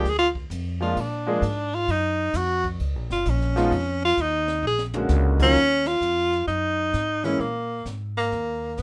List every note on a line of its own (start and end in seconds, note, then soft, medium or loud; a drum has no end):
0.00 0.11 G4 medium
0.05 0.49 D2 medium
0.05 snare soft
0.05 ride medium
0.09 0.18 G#4 loud
0.19 0.28 F4 loud
0.35 kick medium
0.50 0.95 F2 loud
0.50 hi-hat pedal medium
0.50 ride medium
0.81 0.95 F3 medium
0.81 0.95 G#3 medium
0.81 0.95 A#3 medium
0.81 0.95 D4 medium
0.81 1.02 F4 medium
0.81 0.96 F4 medium
0.81 ride soft
0.96 1.41 A#2 medium
0.96 ride medium
1.01 1.76 D4 medium
1.27 1.41 F3 medium
1.27 1.41 G#3 medium
1.27 1.41 A#3 medium
1.27 1.41 D4 medium
1.27 1.41 G#4 medium
1.42 1.87 G#2 loud
1.42 hi-hat pedal soft
1.42 ride medium
1.72 1.93 F4 loud
1.72 ride medium
1.88 2.33 F#2 medium
1.88 2.39 D#4 loud
1.88 ride medium
2.33 2.78 F2 loud
2.33 2.66 F#4 loud
2.33 hi-hat pedal medium
2.33 ride medium
2.64 kick medium
2.64 ride soft
2.80 2.96 C#2 medium
2.80 ride medium
2.96 3.10 A#1 medium
3.10 3.25 F#1 medium
3.10 3.31 F4 medium
3.10 snare medium
3.26 3.70 A#1 loud
3.26 hi-hat pedal medium
3.26 ride medium
3.30 4.04 C#4 medium
3.41 snare soft
3.56 3.70 F3 medium
3.56 3.70 G#3 medium
3.56 3.70 B3 medium
3.56 3.71 D#4 medium
3.56 3.71 F4 medium
3.56 snare medium
3.56 ride medium
3.71 4.16 F2 medium
3.71 ride medium
4.05 4.23 F4 loud
4.17 4.62 D#2 loud
4.17 hi-hat pedal medium
4.17 ride medium
4.22 4.66 D#4 medium
4.48 snare medium
4.63 5.08 A#1 loud
4.67 4.84 G#4 medium
4.78 snare medium
4.94 5.37 D3 medium
4.94 5.37 G#3 medium
4.94 5.37 A#3 medium
4.94 5.38 C#4 medium
4.94 5.38 F#4 medium
4.94 floor tom loud
5.09 5.54 C#2 loud
5.09 snare medium
5.09 hi-hat pedal medium
5.39 5.54 D#3 medium
5.39 5.54 F#3 medium
5.39 5.54 A#3 medium
5.39 5.54 C#4 medium
5.39 5.89 C#4 loud
5.39 5.55 F4 medium
5.39 kick medium
5.39 crash loud
5.55 6.00 D#2 medium
5.55 brush sweep soft
5.55 snare soft
5.86 6.47 F4 medium
5.86 snare medium
5.86 ride medium
6.01 6.46 F2 medium
6.01 hi-hat pedal medium
6.32 snare soft
6.47 6.92 F#2 medium
6.47 7.26 D#4 medium
6.47 brush sweep medium
6.47 snare soft
6.93 7.38 G#2 medium
6.93 snare medium
6.93 hi-hat pedal medium
7.24 7.38 E3 medium
7.24 7.38 G#3 medium
7.24 7.38 A#3 medium
7.24 7.42 C#4 medium
7.24 7.39 C#4 medium
7.24 7.39 E4 medium
7.24 snare soft
7.40 7.84 A#2 medium
7.40 7.86 A#3 medium
7.40 brush sweep soft
7.40 snare soft
7.86 8.30 G#2 medium
7.86 snare medium
7.86 hi-hat pedal medium
8.16 8.75 A#3 medium
8.16 snare soft
8.32 8.77 D#2 medium
8.32 brush sweep soft
8.32 snare soft
8.75 8.82 G2 loud
8.75 8.81 A#3 medium
8.75 snare medium
8.75 hi-hat pedal soft